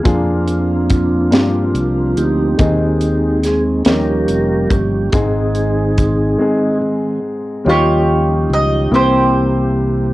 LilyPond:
<<
  \new Staff \with { instrumentName = "Mandolin" } { \time 6/8 \key aes \major \tempo 4. = 47 << { r2. | r2. | r2. | des''4 ees''8 c''4. | } \\ { r2. | r2. | r2. | <f' g'>4. <e' g'>4. | } >> }
  \new Staff \with { instrumentName = "Upright piano" } { \time 6/8 \key aes \major <bes d' f' aes'>4~ <bes d' f' aes'>16 r16 <bes d' f' g'>4~ <bes d' f' g'>16 r16 | <aes c' ees' aes'>4~ <aes c' ees' aes'>16 r16 <bes des' ees' g'>4~ <bes des' ees' g'>16 r16 | <aes c' ees' aes'>4~ <aes c' ees' aes'>16 r16 <aes c' ees' aes'>4~ <aes c' ees' aes'>16 r16 | <g des' ees' f'>4~ <g des' ees' f'>16 r16 <bes c' e' g'>4~ <bes c' e' g'>16 r16 | }
  \new Staff \with { instrumentName = "Upright piano" } { \clef bass \time 6/8 \key aes \major r2. | ees4. ees4. | aes,4. r4. | ees4. c4. | }
  \new Staff \with { instrumentName = "Tonewheel organ" } { \time 6/8 \key aes \major << { f'2~ f'8 g'8~ | g'4 aes'8 bes'4 g'8 | aes'2 r4 | <f des' ees' g'>4. <e bes c' g'>4. | } \\ { d'2~ d'8 <c' ees'>8~ | <c' ees'>4 r8 g'4. | <c' ees'>2 r4 | r2. | } >> }
  \new Staff \with { instrumentName = "Tonewheel organ" } { \clef bass \time 6/8 \key aes \major <f bes c'>2. | <ees aes c'>4. <f g des'>4. | <ees aes>2 <ees aes c'>8 r8 | r2. | }
  \new Staff \with { instrumentName = "Fingered electric bass" } { \clef bass \time 6/8 \key aes \major f,4. g,8 c,8 d,8 | ees,4. ees,8 f,,8 g,,8 | aes,,4. r4. | ees,4 des,8 c,4. | }
  \new DrumStaff \with { instrumentName = "Drums" } \drummode { \time 6/8 <hh bd>8 hh8 <hh bd>8 <hh sn>8 hh8 hh8 | <hh bd>8 hh8 <hh sn>8 <hh sn>8 hh8 <hh bd>8 | <hh bd>8 hh8 <hh bd>8 r4. | r4. r4. | }
>>